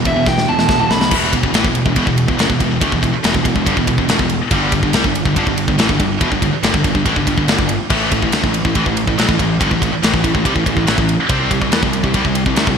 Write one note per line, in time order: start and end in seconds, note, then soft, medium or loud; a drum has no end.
0.05 0.26 E1 loud
0.05 0.15 E2 medium
0.05 0.15 B2 medium
0.05 0.27 E5 loud
0.05 kick medium
0.05 ride medium
0.16 0.25 E2 medium
0.16 0.26 B2 medium
0.26 0.47 E1 medium
0.26 0.46 E2 medium
0.26 0.46 B2 loud
0.26 0.48 G5 medium
0.26 kick loud
0.26 snare medium
0.38 snare medium
0.48 0.68 E1 medium
0.48 0.58 E2 medium
0.48 0.57 B2 medium
0.48 0.90 A5 loud
0.59 0.68 E2 medium
0.59 0.68 B2 medium
0.59 snare medium
0.69 0.89 E1 medium
0.69 0.78 E2 medium
0.69 0.78 B2 medium
0.69 kick loud
0.69 snare medium
0.79 0.89 E2 medium
0.79 0.89 B2 loud
0.90 1.11 B1 medium
0.90 1.00 E2 medium
0.90 1.00 B2 medium
0.90 1.12 B5 loud
0.90 snare loud
1.01 1.10 E2 medium
1.01 1.11 B2 medium
1.01 snare loud
1.11 1.32 E1 medium
1.11 1.32 E2 medium
1.11 1.32 B2 loud
1.11 1.33 E3 loud
1.11 kick loud
1.11 crash loud
1.33 1.43 E1 medium
1.33 1.42 E2 medium
1.33 1.43 B2 medium
1.33 kick medium
1.33 ride medium
1.43 1.53 E1 medium
1.43 1.54 E2 medium
1.43 1.53 B2 medium
1.43 kick medium
1.54 1.64 A1 medium
1.54 1.64 A2 loud
1.54 1.65 E3 loud
1.54 snare loud
1.54 ride loud
1.64 1.84 E1 medium
1.64 1.82 E2 medium
1.64 1.82 B2 medium
1.64 kick loud
1.75 ride medium
1.86 1.96 E1 medium
1.86 1.95 E2 medium
1.86 1.96 B2 medium
1.86 kick medium
1.96 2.06 E1 medium
1.96 2.06 E2 loud
1.96 2.06 B2 loud
1.96 kick medium
1.96 ride loud
2.07 2.27 E1 medium
2.07 2.24 E2 medium
2.07 2.24 B2 medium
2.07 kick medium
2.18 ride medium
2.28 2.39 E1 medium
2.28 2.38 E2 medium
2.28 2.39 B2 medium
2.28 kick medium
2.38 2.49 F#1 medium
2.38 2.49 F#2 medium
2.38 2.49 C#3 loud
2.38 snare loud
2.38 ride loud
2.49 2.59 E1 medium
2.49 2.58 E2 medium
2.49 2.59 B2 medium
2.49 kick medium
2.59 2.80 E1 medium
2.59 2.77 E2 medium
2.59 2.77 B2 medium
2.59 kick medium
2.59 ride medium
2.80 2.91 D2 loud
2.80 2.91 D3 loud
2.80 2.92 A3 loud
2.80 kick loud
2.80 ride loud
2.91 3.02 E1 medium
2.91 3.00 E2 medium
2.91 3.01 B2 medium
2.91 kick loud
3.01 3.13 E1 medium
3.01 3.12 E2 medium
3.01 3.13 B2 medium
3.01 kick medium
3.01 ride medium
3.13 muted distorted electric guitar stroke medium
3.13 muted picked electric bass stroke soft
3.23 3.34 E1 loud
3.23 3.33 E2 loud
3.23 3.33 B2 loud
3.23 snare loud
3.23 ride loud
3.34 3.44 E1 medium
3.34 3.43 E2 medium
3.34 3.44 B2 medium
3.34 kick loud
3.44 3.55 E1 medium
3.44 3.55 E2 medium
3.44 3.55 B2 medium
3.44 kick medium
3.44 ride medium
3.56 3.66 E1 medium
3.56 3.66 E2 medium
3.56 3.66 B2 medium
3.56 kick medium
3.66 3.76 G1 medium
3.66 3.76 G2 medium
3.66 3.77 D3 loud
3.66 kick medium
3.66 ride loud
3.77 3.87 E1 medium
3.77 3.86 E2 medium
3.77 3.87 B2 medium
3.77 kick medium
3.87 3.97 E1 medium
3.87 3.97 E2 medium
3.87 3.98 B2 medium
3.87 kick medium
3.87 ride medium
3.98 4.08 E1 medium
3.98 4.08 E2 medium
3.98 4.09 B2 medium
3.98 kick medium
4.08 4.18 E1 loud
4.08 4.18 E2 medium
4.08 4.19 B2 loud
4.08 snare loud
4.08 ride loud
4.19 4.39 E1 medium
4.19 4.36 E2 medium
4.19 4.37 B2 medium
4.19 kick loud
4.30 ride medium
4.51 4.71 G1 loud
4.51 4.71 G2 medium
4.51 4.72 D3 loud
4.51 4.72 G3 loud
4.51 kick loud
4.51 ride loud
4.72 4.82 G1 medium
4.72 4.82 G2 medium
4.72 4.83 D3 medium
4.72 kick loud
4.72 ride medium
4.83 4.93 G1 medium
4.83 4.94 G2 medium
4.83 4.94 D3 medium
4.83 kick medium
4.93 5.03 C2 loud
4.93 5.04 C3 loud
4.93 5.04 G3 loud
4.93 snare loud
4.93 ride loud
5.04 5.24 G1 medium
5.04 5.21 G2 medium
5.04 5.22 D3 medium
5.04 kick loud
5.15 ride medium
5.25 5.35 G1 medium
5.25 5.35 G2 medium
5.25 5.36 D3 medium
5.25 kick medium
5.36 5.46 G1 loud
5.36 5.46 G2 loud
5.36 5.46 D3 loud
5.36 kick medium
5.36 ride loud
5.47 5.66 G1 medium
5.47 5.64 G2 medium
5.47 5.64 D3 medium
5.47 kick medium
5.58 ride medium
5.68 5.78 G1 medium
5.68 5.78 G2 medium
5.68 5.77 D3 medium
5.68 kick medium
5.78 5.88 A1 medium
5.78 5.88 A2 medium
5.78 5.89 E3 loud
5.78 snare loud
5.78 ride loud
5.89 5.99 G1 medium
5.89 5.98 G2 medium
5.89 5.99 D3 medium
5.89 kick loud
5.99 6.19 G1 medium
5.99 6.16 G2 medium
5.99 6.17 D3 medium
5.99 kick medium
5.99 ride medium
6.20 6.31 E1 medium
6.20 6.31 E2 loud
6.20 6.31 B2 loud
6.20 kick loud
6.20 ride loud
6.32 6.41 G1 medium
6.32 6.41 G2 medium
6.32 6.41 D3 medium
6.32 kick medium
6.42 6.52 G1 medium
6.42 6.52 G2 medium
6.42 6.53 D3 medium
6.42 kick medium
6.42 ride medium
6.52 muted picked electric bass stroke soft
6.52 muted distorted electric guitar stroke medium
6.63 6.73 G1 medium
6.63 6.73 G2 medium
6.63 6.73 D3 loud
6.63 snare loud
6.63 ride loud
6.74 6.84 G1 medium
6.74 6.84 G2 medium
6.74 6.84 D3 medium
6.74 kick loud
6.84 6.94 G1 medium
6.84 6.93 G2 medium
6.84 6.94 D3 medium
6.84 kick medium
6.84 ride medium
6.95 7.05 G1 medium
6.95 7.05 G2 medium
6.95 7.05 D3 medium
6.95 kick medium
7.06 7.15 A1 medium
7.06 7.16 A2 medium
7.06 7.16 E3 loud
7.06 kick loud
7.06 ride loud
7.16 7.26 G1 medium
7.16 7.27 G2 medium
7.16 7.27 D3 medium
7.16 kick medium
7.27 7.37 G1 medium
7.27 7.37 G2 medium
7.27 7.37 D3 medium
7.27 kick medium
7.27 ride medium
7.37 7.47 G1 medium
7.37 7.47 G2 medium
7.37 7.48 D3 medium
7.37 kick medium
7.48 7.58 G1 loud
7.48 7.58 G2 medium
7.48 7.58 D3 medium
7.48 snare loud
7.48 ride loud
7.59 7.78 G1 medium
7.59 7.76 G2 medium
7.59 7.76 D3 medium
7.59 kick loud
7.69 ride medium
7.90 8.10 A1 medium
7.90 8.10 A2 loud
7.90 8.11 E3 loud
7.90 8.12 A3 loud
7.90 kick loud
7.90 crash loud
8.12 8.22 A1 medium
8.12 8.21 A2 medium
8.12 8.21 E3 medium
8.12 kick medium
8.12 ride medium
8.22 8.32 A1 medium
8.22 8.32 A2 medium
8.22 8.33 E3 medium
8.22 kick medium
8.32 8.43 D2 loud
8.32 8.43 D3 medium
8.32 8.43 A3 loud
8.32 snare loud
8.32 ride loud
8.43 8.63 A1 medium
8.43 8.60 A2 medium
8.43 8.61 E3 medium
8.43 kick medium
8.54 ride medium
8.65 8.75 A1 medium
8.65 8.75 A2 medium
8.65 8.75 E3 medium
8.65 kick medium
8.75 8.85 A1 medium
8.75 8.85 A2 medium
8.75 8.85 E3 loud
8.75 kick medium
8.75 ride loud
8.86 9.06 A1 medium
8.86 9.03 A2 medium
8.86 9.03 E3 medium
8.86 kick medium
8.97 ride medium
9.07 9.17 A1 medium
9.07 9.17 A2 medium
9.07 9.18 E3 medium
9.07 kick medium
9.18 9.28 B1 medium
9.18 9.28 B2 medium
9.18 9.28 F#3 medium
9.18 snare loud
9.18 ride loud
9.29 9.38 A1 medium
9.29 9.38 A2 medium
9.29 9.39 E3 medium
9.29 kick loud
9.39 9.59 A1 medium
9.39 9.56 A2 medium
9.39 9.56 E3 medium
9.39 kick medium
9.39 ride medium
9.60 9.70 G1 loud
9.60 9.70 G2 loud
9.60 9.71 D3 loud
9.60 kick loud
9.60 ride loud
9.71 9.81 A1 medium
9.71 9.81 A2 medium
9.71 9.81 E3 medium
9.71 kick medium
9.82 9.92 A1 medium
9.82 9.91 A2 medium
9.82 9.92 E3 medium
9.82 kick medium
9.82 ride medium
9.92 muted distorted electric guitar stroke medium
9.92 muted picked electric bass stroke soft
10.03 10.13 A1 loud
10.03 10.12 A2 loud
10.03 10.13 E3 loud
10.03 snare loud
10.03 ride loud
10.14 10.23 A1 medium
10.14 10.24 A2 medium
10.14 10.24 E3 medium
10.14 kick medium
10.24 10.34 A1 medium
10.24 10.34 A2 medium
10.24 10.34 E3 medium
10.24 kick medium
10.24 ride medium
10.35 10.44 A1 medium
10.35 10.45 A2 medium
10.35 10.45 E3 medium
10.35 kick medium
10.45 10.55 C2 loud
10.45 10.55 C3 medium
10.45 10.55 G3 loud
10.45 kick medium
10.45 ride medium
10.55 10.66 A1 medium
10.55 10.65 A2 medium
10.55 10.65 E3 medium
10.55 kick medium
10.66 10.76 A1 medium
10.66 10.75 A2 medium
10.66 10.76 E3 medium
10.66 kick medium
10.66 ride medium
10.77 10.87 A1 medium
10.77 10.86 A2 medium
10.77 10.86 E3 medium
10.77 kick medium
10.87 10.97 A1 medium
10.87 10.97 A2 medium
10.87 10.98 E3 loud
10.87 snare loud
10.87 ride medium
10.98 11.18 A1 medium
10.98 11.15 A2 medium
10.98 11.15 E3 medium
10.98 kick loud
11.09 ride medium
11.29 11.49 C2 loud
11.29 11.50 C3 medium
11.29 11.50 G3 loud
11.29 11.51 C4 loud
11.29 kick loud
11.29 ride loud
11.51 11.61 C2 medium
11.51 11.60 C3 medium
11.51 11.61 G3 medium
11.51 kick medium
11.51 ride medium
11.61 11.71 C2 medium
11.61 11.71 C3 medium
11.61 11.72 G3 medium
11.61 kick medium
11.71 11.82 E2 medium
11.71 11.82 E3 medium
11.71 11.82 B3 loud
11.71 snare loud
11.71 ride loud
11.83 12.02 C2 medium
11.83 12.00 C3 medium
11.83 12.00 G3 medium
11.83 kick loud
11.93 ride medium
12.03 12.14 C2 medium
12.03 12.13 C3 medium
12.03 12.14 G3 medium
12.03 kick medium
12.14 12.24 C2 loud
12.14 12.24 C3 loud
12.14 12.24 G3 loud
12.14 kick loud
12.14 ride loud
12.25 12.45 C2 medium
12.25 12.42 C3 medium
12.25 12.42 G3 medium
12.25 kick medium
12.35 ride medium
12.46 12.56 C2 medium
12.46 12.56 C3 medium
12.46 12.57 G3 medium
12.46 kick loud
12.56 12.67 D2 medium
12.56 12.67 D3 loud
12.56 12.67 A3 loud
12.56 snare loud
12.56 ride loud
12.67 12.77 C2 medium
12.67 12.76 C3 medium
12.67 12.77 G3 medium
12.67 kick loud